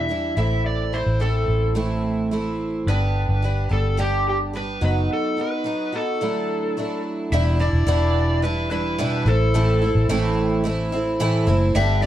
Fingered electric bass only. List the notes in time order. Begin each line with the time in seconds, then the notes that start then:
Already playing: E2
0.37 A1
1.06 A1
1.48 A1
2.87 G1
3.29 G1
3.71 G1
4.82 F#1
7.32 E1
7.73 E1
7.87 E1
9.25 A1
9.95 A1
10.09 A1
11.47 F#1
11.75 G1